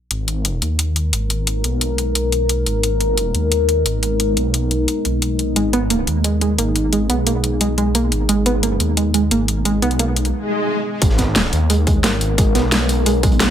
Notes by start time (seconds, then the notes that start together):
0.11 G#1 G#3 B3 D#4 A#4, closed hi-hat
0.28 closed hi-hat
0.45 closed hi-hat
0.62 D#2, closed hi-hat
0.79 closed hi-hat
0.96 closed hi-hat
1.13 G#1, closed hi-hat
1.30 closed hi-hat
1.47 closed hi-hat
1.64 B1, closed hi-hat
1.81 closed hi-hat
1.98 closed hi-hat
2.15 B1, closed hi-hat
2.32 closed hi-hat
2.49 closed hi-hat
2.66 G#1, closed hi-hat
2.83 G#1, closed hi-hat
3.00 closed hi-hat
3.17 closed hi-hat
3.35 D#2, closed hi-hat
3.52 closed hi-hat
3.69 closed hi-hat
3.86 G#1, closed hi-hat
4.03 closed hi-hat
4.20 closed hi-hat
4.37 B1, closed hi-hat
4.54 closed hi-hat
4.71 closed hi-hat
4.88 closed hi-hat
5.05 B1, closed hi-hat
5.22 closed hi-hat
5.39 closed hi-hat
5.56 G#1 G#3 G#4, closed hi-hat
5.73 B3, closed hi-hat
5.90 A#3, closed hi-hat
6.07 D#2, closed hi-hat
6.24 G#3, closed hi-hat
6.41 G#3, closed hi-hat
6.58 G#1 A#3, closed hi-hat
6.76 closed hi-hat
6.93 G#3, closed hi-hat
7.10 B1 B3, closed hi-hat
7.27 A#3, closed hi-hat
7.44 closed hi-hat
7.61 B1 G#3, closed hi-hat
7.78 G#3, closed hi-hat
7.95 A#3, closed hi-hat
8.12 G#1, closed hi-hat
8.29 G#1 G#3, closed hi-hat
8.46 B3, closed hi-hat
8.63 A#3, closed hi-hat
8.80 D#2, closed hi-hat
8.97 G#3, closed hi-hat
9.14 G#3, closed hi-hat
9.31 G#1 A#3, closed hi-hat
9.48 closed hi-hat
9.65 G#3, closed hi-hat
9.82 B1 B3, closed hi-hat
9.91 closed hi-hat
9.99 A#3, closed hi-hat
10.16 closed hi-hat
10.25 closed hi-hat
10.33 swell
11.02 G#1 G#3 B3 D#4 A#4, kick, closed hi-hat
11.09 snare
11.18 B3, kick, snare, closed hi-hat
11.35 A#3, snare, closed hi-hat
11.45 snare
11.53 D#2, closed hi-hat
11.70 G#3, closed hi-hat
11.87 G#3, kick, closed hi-hat
12.04 G#1 A#3, snare, closed hi-hat
12.21 closed hi-hat
12.38 G#3, kick, closed hi-hat
12.55 B1 B3, snare, closed hi-hat
12.72 A#3, snare, closed hi-hat
12.89 closed hi-hat
13.06 B1 G#3, closed hi-hat
13.23 G#3, kick, closed hi-hat
13.32 closed hi-hat
13.40 A#3, snare, closed hi-hat